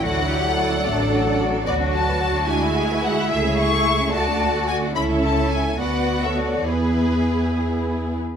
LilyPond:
<<
  \new Staff \with { instrumentName = "Violin section" } { \time 6/8 \key d \major \tempo 4. = 73 fis''2~ fis''8 r8 | \key a \major d''8 a''4 gis''4 fis''8 | e''8 cis'''4 a''4 gis''8 | b''8 a''8 gis''8 fis''8. e''16 d''8 |
b'4. r4. | }
  \new Staff \with { instrumentName = "Cello section" } { \time 6/8 \key d \major fis'8 g'8 a'2 | \key a \major fis'4. e'4. | gis'4. fis'4. | e'4. fis'4. |
gis'2~ gis'16 r8. | }
  \new Staff \with { instrumentName = "Violin section" } { \time 6/8 \key d \major << { d''2.~ | \key a \major d''4. e''4.~ | e''4. d''4. | e''4. d''8. cis''8. |
b'2~ b'8. r16 | } \\ { a16 d'16 fis'16 a'16 fis'16 d'16 a16 d'16 fis'16 a'16 fis'16 d'16 | b16 d'16 fis'16 b'16 fis'16 d'16 d'16 e'16 gis'16 b'16 gis'16 e'16 | a16 cis'16 e'16 a'16 e'16 cis'16 a16 d'16 fis'16 a'16 fis'16 d'16 | a'4. b'8. a'8. |
gis'2~ gis'8. r16 | } >> }
  \new Staff \with { instrumentName = "Viola section" } { \time 6/8 \key d \major << { e'4. d'4. | \key a \major fis'2. | e'4. fis'4. | e'4. fis'4. |
e'2~ e'8 r8 | } \\ { fis2.~ | fis4. gis4. | a2. | cis'4. b4. |
b2~ b8 r8 | } >> }
  \new Staff \with { instrumentName = "Double bass section" } { \clef bass \time 6/8 \key d \major d,4. a,,4. | \key a \major d,4. d,4. | cis,4. d,4. | cis,4. d,4. |
e,2~ e,8 r8 | }
>>